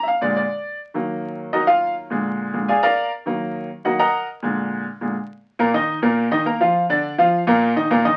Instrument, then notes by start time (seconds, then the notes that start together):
grand piano
0.03 E5
0.08 F5
0.21 A#2 D3 G#3 D5
0.37 D5
0.94 D#3 F#3 A#3
1.53 D#4 F#4 A#4 D#5
1.67 F4 F5
2.10 A#2 D3 G#3
2.54 A#2 D3 G#3
2.68 G#4 D5 F5 G#5
2.83 A#4 D5 F5 A#5
3.26 D#3 F#3 A#3
3.84 D#3 F#3 A#3 F#4 A#4 D#5 F#5
3.99 A#4 D#5 F#5 A#5
4.43 A#2 D3 G#3
5.01 A#2 D3 G#3
5.59 A#2 A#3 A#4
5.74 D#3 D#4 D#5
6.02 A#2 A#3 A#4
6.31 D#3 D#4 D#5
6.46 A#3 A#4 A#5
6.61 F3 F4 F5
6.89 D3 D4 D5
7.18 F3 F4 F5
7.47 A#2 A#3 A#4
7.76 D#3 D#4 D#5
7.91 A#2 A#3 A#4
8.05 D#3 D#4 D#5